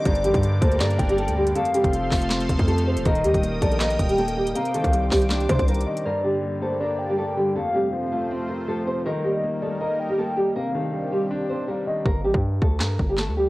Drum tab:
HH |x--x--x--x--x-----x--x--x--x--x--x--x--x-----x--|x--x--x--x--x-----o--x--x--x--x--x--x--x-----x--|x--x--x--x--x-----x--x--x--x--x--x--x--x-----x--|x--x--x--x--x-----o--x--x--x--x--x--x-x-x----x--|
CP |------------------------x-----------------------|------------------x-----x-----------------------|------------------------x-----------------------|------------------x-----x-----------------------|
SD |------------------------o-----------------------|------------------o-----o-----------------------|------------------------o-----------------------|------------------o-----o-----------------------|
BD |o--------o--------o-----------o-----------------|---------o--------o-----------o--o--------------|o--------o--------o-----------o-----------------|---------o--------o-----------o--o--------------|

HH |------------------------------------------------|------------------------------------------------|------------------------------------------------|------------------------------------------------|
CP |------------------------------------------------|------------------------------------------------|------------------------------------------------|------------------------------------------------|
SD |------------------------------------------------|------------------------------------------------|------------------------------------------------|------------------------------------------------|
BD |------------------------------------------------|------------------------------------------------|------------------------------------------------|------------------------------------------------|

HH |------------------------------------------------|
CP |------------------------x-----------x-----------|
SD |------------------------o-----------o-----------|
BD |o--------o--------o-----------o-----------------|